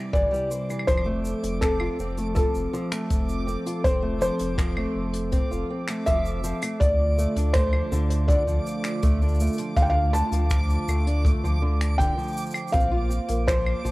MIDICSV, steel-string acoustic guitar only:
0, 0, Header, 1, 2, 480
1, 0, Start_track
1, 0, Key_signature, -1, "major"
1, 0, Tempo, 740741
1, 572, Time_signature, 4, 2, 24, 8
1, 9016, End_track
2, 0, Start_track
2, 0, Title_t, "Steel-string acoustic guitar"
2, 0, Program_c, 0, 25
2, 84, Note_on_c, 0, 52, 92
2, 196, Note_off_c, 0, 52, 0
2, 205, Note_on_c, 0, 55, 75
2, 317, Note_off_c, 0, 55, 0
2, 328, Note_on_c, 0, 72, 65
2, 438, Note_off_c, 0, 72, 0
2, 450, Note_on_c, 0, 52, 62
2, 564, Note_off_c, 0, 52, 0
2, 566, Note_on_c, 0, 53, 87
2, 677, Note_off_c, 0, 53, 0
2, 685, Note_on_c, 0, 57, 70
2, 1037, Note_off_c, 0, 57, 0
2, 1050, Note_on_c, 0, 60, 73
2, 1159, Note_off_c, 0, 60, 0
2, 1168, Note_on_c, 0, 65, 71
2, 1278, Note_off_c, 0, 65, 0
2, 1294, Note_on_c, 0, 60, 74
2, 1401, Note_off_c, 0, 60, 0
2, 1412, Note_on_c, 0, 57, 64
2, 1520, Note_off_c, 0, 57, 0
2, 1529, Note_on_c, 0, 53, 81
2, 1759, Note_off_c, 0, 53, 0
2, 1771, Note_on_c, 0, 53, 89
2, 1880, Note_off_c, 0, 53, 0
2, 1891, Note_on_c, 0, 57, 67
2, 2239, Note_off_c, 0, 57, 0
2, 2248, Note_on_c, 0, 60, 69
2, 2358, Note_off_c, 0, 60, 0
2, 2374, Note_on_c, 0, 65, 71
2, 2481, Note_off_c, 0, 65, 0
2, 2493, Note_on_c, 0, 60, 78
2, 2600, Note_off_c, 0, 60, 0
2, 2608, Note_on_c, 0, 57, 70
2, 2718, Note_off_c, 0, 57, 0
2, 2727, Note_on_c, 0, 53, 84
2, 2957, Note_off_c, 0, 53, 0
2, 2966, Note_on_c, 0, 53, 99
2, 3077, Note_off_c, 0, 53, 0
2, 3089, Note_on_c, 0, 57, 72
2, 3439, Note_off_c, 0, 57, 0
2, 3448, Note_on_c, 0, 60, 74
2, 3558, Note_off_c, 0, 60, 0
2, 3569, Note_on_c, 0, 65, 73
2, 3679, Note_off_c, 0, 65, 0
2, 3695, Note_on_c, 0, 60, 64
2, 3802, Note_off_c, 0, 60, 0
2, 3815, Note_on_c, 0, 57, 67
2, 3922, Note_off_c, 0, 57, 0
2, 3931, Note_on_c, 0, 53, 101
2, 4160, Note_off_c, 0, 53, 0
2, 4171, Note_on_c, 0, 53, 90
2, 4280, Note_off_c, 0, 53, 0
2, 4293, Note_on_c, 0, 57, 65
2, 4413, Note_off_c, 0, 57, 0
2, 4653, Note_on_c, 0, 57, 66
2, 4761, Note_off_c, 0, 57, 0
2, 4774, Note_on_c, 0, 62, 71
2, 4881, Note_off_c, 0, 62, 0
2, 4895, Note_on_c, 0, 57, 79
2, 5001, Note_off_c, 0, 57, 0
2, 5009, Note_on_c, 0, 53, 68
2, 5119, Note_off_c, 0, 53, 0
2, 5131, Note_on_c, 0, 50, 106
2, 5359, Note_off_c, 0, 50, 0
2, 5372, Note_on_c, 0, 50, 88
2, 5480, Note_off_c, 0, 50, 0
2, 5489, Note_on_c, 0, 53, 67
2, 5838, Note_off_c, 0, 53, 0
2, 5851, Note_on_c, 0, 57, 85
2, 5959, Note_off_c, 0, 57, 0
2, 5975, Note_on_c, 0, 62, 74
2, 6081, Note_off_c, 0, 62, 0
2, 6094, Note_on_c, 0, 57, 65
2, 6201, Note_off_c, 0, 57, 0
2, 6213, Note_on_c, 0, 53, 61
2, 6320, Note_off_c, 0, 53, 0
2, 6334, Note_on_c, 0, 50, 95
2, 6561, Note_off_c, 0, 50, 0
2, 6571, Note_on_c, 0, 50, 91
2, 6679, Note_off_c, 0, 50, 0
2, 6694, Note_on_c, 0, 53, 74
2, 7041, Note_off_c, 0, 53, 0
2, 7056, Note_on_c, 0, 57, 76
2, 7162, Note_off_c, 0, 57, 0
2, 7171, Note_on_c, 0, 62, 62
2, 7279, Note_off_c, 0, 62, 0
2, 7293, Note_on_c, 0, 57, 65
2, 7401, Note_off_c, 0, 57, 0
2, 7412, Note_on_c, 0, 53, 71
2, 7520, Note_off_c, 0, 53, 0
2, 7530, Note_on_c, 0, 50, 81
2, 7759, Note_off_c, 0, 50, 0
2, 7768, Note_on_c, 0, 50, 93
2, 7878, Note_off_c, 0, 50, 0
2, 7889, Note_on_c, 0, 53, 71
2, 8238, Note_off_c, 0, 53, 0
2, 8249, Note_on_c, 0, 60, 83
2, 8359, Note_off_c, 0, 60, 0
2, 8369, Note_on_c, 0, 65, 66
2, 8478, Note_off_c, 0, 65, 0
2, 8487, Note_on_c, 0, 60, 66
2, 8597, Note_off_c, 0, 60, 0
2, 8613, Note_on_c, 0, 58, 72
2, 8720, Note_off_c, 0, 58, 0
2, 8728, Note_on_c, 0, 53, 86
2, 8958, Note_off_c, 0, 53, 0
2, 8972, Note_on_c, 0, 53, 97
2, 9016, Note_off_c, 0, 53, 0
2, 9016, End_track
0, 0, End_of_file